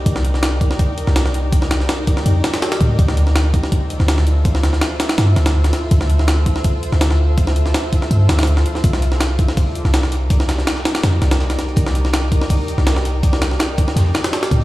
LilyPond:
<<
  \new Staff \with { instrumentName = "808-style bass" } { \clef bass \time 4/4 \key c \dorian \tempo 4 = 164 c,4.~ c,16 r4 c,4~ c,16~ | c,4 r4 f,8 r4 a,8 | d,4.~ d,16 r4 d,4~ d,16~ | d,4 r4 g,8 d,4 r8 |
d,4.~ d,16 r4 d,4~ d,16~ | d,4 r4 g,8 d,4 r8 | c,4.~ c,16 r4 c,4~ c,16~ | c,4 r4 f,8 c,4 r8 |
c,4.~ c,16 r4 c,4~ c,16~ | c,4 r4 f,8 r4 a,8 | }
  \new DrumStaff \with { instrumentName = "Drums" } \drummode { \time 4/4 <hh bd>16 sn16 hh16 sn16 <hh sn>8 <hh bd>16 sn16 <hh bd>8 hh16 sn16 <hh sn>16 sn16 hh8 | <hh bd>16 sn16 <hh sn>16 sn16 <hh sn>8 <hh bd>16 sn16 hh8 <hh sn>16 <hh sn>16 <hh sn>16 <hh sn>16 <hh bd>8 | <hh bd>16 sn16 hh16 sn16 <hh sn>8 <hh bd>16 sn16 <hh bd>8 hh16 sn16 <hh sn>16 sn16 hh8 | <hh bd>16 sn16 <hh sn>16 sn16 <hh sn>8 <hh sn>16 <hh sn>16 <hh sn>8 <hh sn>16 <hh sn>16 r16 <hh sn>16 <hh sn>8 |
<hh bd>16 sn16 hh16 sn16 <hh sn>8 <hh bd>16 sn16 <hh bd>8 hh16 sn16 <hh sn>16 sn8. | <hh bd>16 sn16 hh16 sn16 <hh sn>8 <hh bd>16 sn16 hh8 <hh sn>16 <hh sn>32 <hh sn>32 hh16 sn16 hh16 sn16 | <hh bd>16 sn16 hh16 sn16 <hh sn>8 <hh bd>16 sn16 <hh hho bd>8 hh16 sn16 <hh sn>16 sn16 <hh sn>8 | <hh bd>16 sn16 <hh sn>16 sn16 <hh sn>16 <hh sn>16 <hh sn>16 <hh sn>16 <hh sn>8 <hh sn>16 <hh sn>16 <hh sn>16 <hh sn>16 <hh sn>16 hh16 |
<hh bd>16 sn16 hh16 sn16 <hh sn>8 <hh bd>16 sn16 <hh hho bd>8 hh16 sn16 <hh sn>16 sn16 <hh sn>8 | <hh bd>16 sn16 <hh sn>16 sn16 <hh sn>8 <hh bd>16 <hh sn>16 <hh sn>16 sn16 <hh sn>16 <hh sn>16 <hh sn>16 <hh sn>16 <hh bd>16 hh16 | }
>>